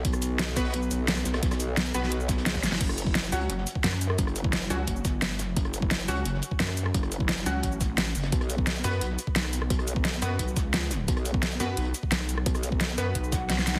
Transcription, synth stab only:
\new Staff \with { instrumentName = "Synth stab" } { \time 4/4 \key fis \phrygian \tempo 4 = 174 r4. <b fis' b'>8 r2 | r4. <b fis' b'>8 r2 | r4. <fis cis' fis'>8 r2 | r4. <fis cis' fis'>8 r2 |
r4. <fis cis' fis'>8 r2 | r4. <fis cis' fis'>8 r2 | r4. <b fis' b'>8 r2 | r4. <b fis' b'>8 r2 |
r4. <b fis' b'>8 r2 | r4. <b fis' b'>8 r2 | }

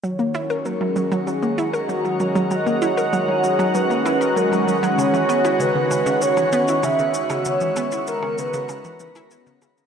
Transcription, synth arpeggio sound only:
\new Staff \with { instrumentName = "Synth arpeggio sound" } { \clef bass \time 4/4 \key fis \mixolydian \tempo 4 = 97 fis16 ais16 e'16 ais'16 fis16 fis16 fis16 fis16 fis16 ais16 e'16 ais'16 fis16 fis16 fis16 fis16 | fis16 ais16 e'16 ais'16 fis16 fis16 fis16 fis16 fis16 ais16 e'16 ais'16 fis16 fis16 fis16 fis16 | cis16 e16 b16 e'16 cis16 cis16 cis16 cis16 cis16 e16 b16 e'16 cis16 cis16 cis16 cis16 | cis16 e16 b16 e'16 cis16 cis16 cis16 cis16 cis16 e16 e16 e'16 e'16 cis16 cis16 cis16 | }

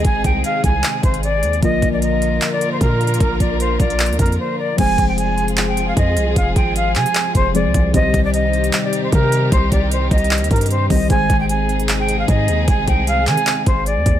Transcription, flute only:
\new Staff \with { instrumentName = "Flute" } { \time 4/4 \key f \dorian \tempo 4 = 152 aes''8 g''8 f''8 aes''4 c''8 d''4 | ees''8. d''16 ees''4~ ees''16 d''8 c''16 bes'4 | bes'8 d''8 c''8 d''4 bes'8 c''8 d''8 | aes''8. g''16 aes''4~ aes''16 g''8 f''16 ees''4 |
f''8 g''8 f''8 aes''4 c''8 d''4 | ees''8. d''16 ees''4~ ees''16 d''8 c''16 bes'4 | c''8 d''8 c''8 ees''4 bes'8 c''8 ees''8 | aes''8. g''16 aes''4~ aes''16 g''8 f''16 ees''4 |
aes''8 g''8 f''8 aes''4 c''8 d''4 | }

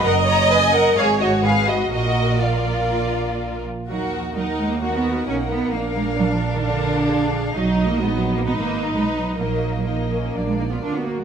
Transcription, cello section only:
\new Staff \with { instrumentName = "Cello section" } { \clef bass \time 4/4 \key ees \minor \tempo 4 = 128 ges,2 aes,2 | bes,2.~ bes,8 r8 | ges8 f8 ges8 aes16 bes16 bes16 ces'8. des'8 ces'8 | bes8 aes8 ges16 f8 ees16 d4. r8 |
fis8. bes16 aes16 fis8 bes16 ces'16 bes8. aes8 ges8 | ges4 f4 ges16 aes16 bes16 ces'16 d'16 ces'16 bes16 aes16 | }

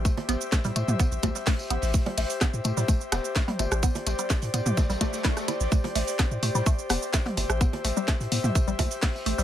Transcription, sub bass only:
\new Staff \with { instrumentName = "Sub bass" } { \clef bass \time 4/4 \key a \minor \tempo 4 = 127 r8 a,,16 r8 a,16 a,16 a,16 r16 a,,16 c,16 r8. a,,16 a,,16 | r8 a,,16 r8 a,16 a,16 a,16 r8 e,,16 r8. g,,16 a,,16 | r8 a,,16 r8 a,16 a,16 a,16 r16 a,,16 r4 r16 a,,16 | r8 a,,16 r8 a,16 a,16 a,16 r8 e,,16 r8. g,,16 a,,16 |
r8 a,,16 r8 a,16 a,16 a,16 r16 a,,16 c,16 r8. a,,16 a,,16 | }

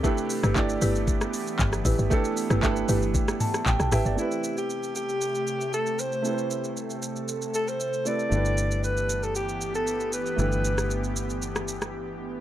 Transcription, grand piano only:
\new Staff \with { instrumentName = "Grand piano" } { \time 4/4 \key a \minor \tempo 4 = 116 << { r1 | r2 r8 a''8 g''16 a''16 <e'' g''>16 d''16~ | d''16 r2. r8. | r1 |
r1 | r1 | } \\ { <a d' e' g' b'>4 <a d' e' g' d''>4. r4. | <a d' e' g' a'>4 <a d' e' g' a' b'>4. r4. | <a c' e' g' b'>1 | <a c' e' g' b' c''>2.~ <a c' e' g' b' c''>8 <a c' e' g' b'>8 |
<a d' e' g' b'>1 | <a d' e' g' b'>1 | } >> }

